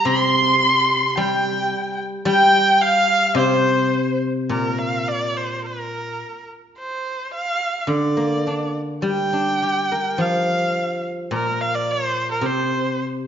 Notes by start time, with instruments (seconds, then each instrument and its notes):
Already playing: guzheng G3
0.05 guzheng C3, erhu C6
1.17 guzheng G3, erhu G5
2.25 guzheng G3, erhu G5
2.82 erhu F5
3.35 guzheng C3, erhu C5
4.49 guzheng A#2, erhu A#4
4.78 erhu F5
5.08 erhu D5
5.37 erhu C5
5.66 erhu A#4
6.79 erhu C5
7.34 erhu F5
7.81 erhu F5
7.87 guzheng D3, erhu D5
8.17 guzheng A#3
8.47 guzheng D4
9.02 guzheng G3, erhu G5
9.33 guzheng D4
9.62 guzheng G4
9.92 guzheng A#4
10.18 guzheng F3, erhu F5
11.31 guzheng A#2, erhu A#4
11.61 erhu F5
11.75 erhu D5
11.91 erhu C5
12.32 erhu A#4
12.41 guzheng C3
12.46 erhu C5